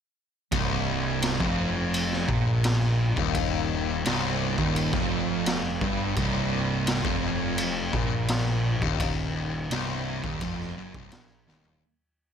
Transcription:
0.52 C1 C2, kick, ride bell
1.22 snare, ride bell
1.40 F1 F2, kick
1.94 ride bell
2.12 snare
2.28 A#1 A#2, kick
2.64 snare, ride bell
3.16 D#1 D#2, kick
3.35 kick, ride bell
4.05 C1 C2, snare, ride bell
4.58 D#1 D#2, kick
4.76 ride bell
4.93 F1 F2, kick, snare
5.46 snare, ride bell
5.81 G1 G2, kick
6.16 C1 C2, kick, ride bell
6.87 snare, ride bell
7.04 F1 F2, kick
7.58 ride bell
7.93 A#1 A#2, kick
8.28 snare, ride bell
8.82 D#1 D#2, kick
9.00 kick, ride bell
9.71 C1 C2, snare, ride bell
10.24 D#1 D#2, kick
10.41 F1 F2, kick, ride bell
10.60 snare
10.78 F#1 F#2
10.94 C1 C2, kick
11.12 A#1 A#2, snare, ride bell
11.48 D#1 D#2, snare
11.65 floor tom

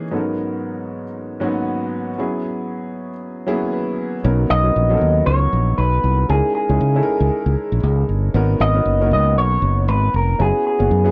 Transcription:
Already playing: E3 A#3 C#4 D#4 G#4
0.11 G#2 F#3 B3 C#4 D#4 A4
0.19 A#4
1.40 G#2 F#3 A#3 C#4 D#4 F#4
1.47 B3
2.18 F#3 B3 C#4 E4 G#4
3.46 F#3 A#3 C#4 E4 G#4
3.53 B3
3.73 B4
4.24 B1 F#3 B3 C#4 D#4 A#4
4.50 B1 D#5
4.64 F#3 B3 C#4 D#4 A#4
4.76 A#1
4.89 F#3 B3 C#4 D#4 A4
4.97 A#4
5.01 D#2
5.26 C#2 C#5
5.53 A#1
5.78 B1 B4
6.04 C2
6.29 C#2 G#3 C#4 D#4 E4 G#4 A#4
6.55 G#4
6.69 C#2 G#3 C#4 D#4 E4 G#4
6.81 C#3
6.95 G#3 C#4 D#4 E4 A4
7.03 A#4
7.20 C#2
7.46 C#2
7.72 A#1
7.83 C#2
8.09 G1
8.34 G#1 B3 C#4 D#4 F#4 A#4
8.60 G#1 D#5
8.75 B3 C#4 D#4 F#4 A#4
8.86 F#1
9.00 A#3 C#4 D#4 F#4 A#4
9.06 B3
9.11 C#2 D#5
9.37 B1 C#5
9.62 F#1
9.88 G#1 B4
10.14 F1 A#4
10.39 F#1 B3 C#4 E4 F#4 G#4
10.67 G#4
10.79 F#1 B3 C#4 E4 F#4 G#4
10.91 F#2
11.04 B3 C#4 E4 F#4 G#4

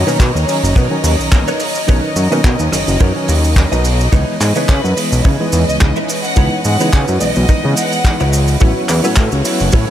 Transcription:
Already playing: C#5 D#5 A#5
0.07 B2 D#3 F#3 A#3 C#4 D#4 A#4 B4 C#5, shaker
0.20 B2, kick, clap, shaker
0.35 D#2, shaker
0.47 D#3 F#3 C#4, open hi-hat, shaker
0.64 F#1, shaker
0.75 B2 D#4 A#4 B4 C#5, kick, shaker
0.91 D#3 F#3 C#4
1.04 D#2, open hi-hat, shaker
1.19 B1, shaker
1.31 B1 D#3 F#3 A#3 C#4, kick, clap, shaker
1.48 D#4 A#4 B4 C#5, shaker
1.60 open hi-hat, shaker
1.75 muted clean electric guitar stroke, shaker
1.87 B1 D#3 F#3 C#4 D#4 A#4 B4 C#5, kick, shaker
2.16 F#2, open hi-hat, shaker
2.31 B2 D#3 F#3 A#3 C#4 D#4 A#4 B4 D#5, shaker
2.44 B2, kick, clap, shaker
2.59 D#2, shaker
2.72 F#1 D#3 F#3 C#4, cross-stick, open hi-hat, shaker
2.88 F#1, shaker
3.00 F#2 D#4 A#4 B4 C#5, kick, shaker
3.15 D#3 F#3 C#4
3.28 D#2, open hi-hat, shaker
3.44 shaker
3.56 D#3 F#3 A#3 C#4, kick, clap, shaker
3.72 B1 D#4 A#4 B4 D#5, shaker
3.84 open hi-hat, shaker
4.00 muted clean electric guitar stroke, shaker
4.12 C#2 E3 G#3 B3 C#4 D#4 E4 B4 C#5 D#5, kick, shaker
4.40 G#2, clap, open hi-hat, shaker
4.56 C#3 E3 G#3 B3 D#4 E4 B4 C#5, shaker
4.69 C#3 B4, kick, clap, shaker
4.84 F#2, shaker
4.96 E3 G#3 B3 D#5, open hi-hat, shaker
5.12 B1, shaker
5.24 C#3 D#4 E4 B4 C#5, kick, shaker
5.40 E3 G#3 B3 D#5
5.52 E2, open hi-hat, shaker
5.69 C#2 D#5, shaker
5.80 C#2 E3 G#3 B3 D#4 D#5, kick, clap, shaker
5.96 D#4 E4 B4 E5, shaker
6.08 open hi-hat, shaker
6.24 F#5, muted clean electric guitar stroke, shaker
6.36 C#2 E3 G#3 B3 D#4 E4 B4 C#5, kick, shaker
6.64 G#2 F#5, open hi-hat, shaker
6.80 C#3 E3 G#3 B3 D#4 E4 B4 C#5, shaker
6.93 C#3, kick, clap, shaker
7.08 F#2, shaker
7.20 B1 E3 G#3 B3 D#5, open hi-hat, shaker
7.36 B1, shaker
7.49 D#4 E4 B4 D#5, kick, shaker
7.64 C#3 E3 G#3 B3 D#5
7.76 F#5, open hi-hat, shaker
7.92 shaker
8.04 E3 G#3 B3 D#4, kick, clap, shaker
8.20 C#2 D#4 E4 B4 C#5, shaker
8.33 open hi-hat, shaker
8.48 muted clean electric guitar stroke, shaker
8.60 A1 F#3 A3 B3 C#4 E4 F#4 A4 B4 C#5, kick, shaker
8.89 E2, clap, open hi-hat, shaker
9.04 A2 F#3 B3 C#4 E4 F#4 A4 B4 C#5, shaker
9.16 A2, kick, clap, shaker
9.32 C#2, shaker
9.44 F#3 B3 C#4 E4, open hi-hat, shaker
9.60 F#1, shaker
9.72 A2 F#4 A4 B4 C#5, kick, shaker

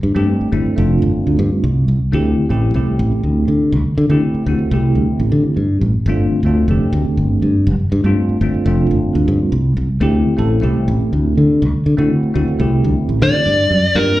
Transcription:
0.03 G2
0.14 G2 A3 C4 D4 G4
0.41 muted fingered electric bass stroke
0.52 G1 A3 C4 D4 E4
0.66 muted fingered electric bass stroke
0.76 F1 A3 C4 D4 F4
1.02 G1
1.27 D2
1.39 G2
1.64 C2
1.88 C2
2.12 D2 A3 C4 E4 G4
2.49 A1 A3 C4 E4 G4
2.74 C2 A3 C4 E4 G4
2.99 A1
3.12 muted fingered electric bass stroke
3.23 D2
3.48 D3
3.72 D2
3.85 muted fingered electric bass stroke
3.98 D3
4.10 D3 A3 C4 E4 G4
4.34 muted fingered electric bass stroke
4.46 D2 A3 C4 E4 F#4
4.59 muted fingered electric bass stroke
4.71 C2 A3 C4 E4 G4
4.95 D2
5.20 A1
5.32 D3
5.57 G2
5.81 A1
6.06 G1 A3 C4 D4 F4
6.43 D2 A3 C4 D4 F4
6.68 F1 A3 C4 D4 G4
6.93 D2
7.05 muted fingered electric bass stroke
7.17 G1
7.42 G2
7.67 G1
7.79 muted fingered electric bass stroke
7.92 G2
8.04 G2 A3 C4 D4 F4
8.29 muted fingered electric bass stroke
8.41 G1 A3 C4 D4 F4
8.54 muted fingered electric bass stroke
8.65 F1 A3 C4 D4 F4
8.91 G1
9.15 D2
9.28 G2
9.52 C2
9.77 C2
10.01 D2 A3 C4 E4 G4
10.37 A1 A3 C4 E4 A4
10.61 C2 A3 C4 E4 G4
10.88 A1
11.01 muted fingered electric bass stroke
11.13 D2
11.38 D3
11.62 D2
11.74 muted fingered electric bass stroke
11.86 D3
11.97 D3 A3 C4 E4 F#4
12.23 muted fingered electric bass stroke
12.34 D2 A3 C4 E4 F#4
12.48 muted fingered electric bass stroke
12.59 C2 A3 C4 E4 G4
12.84 D2
13.09 A1
13.22 D3 D5
13.46 G2
13.71 F#2
13.94 G2 A#3 C4 F4 G4 A#4

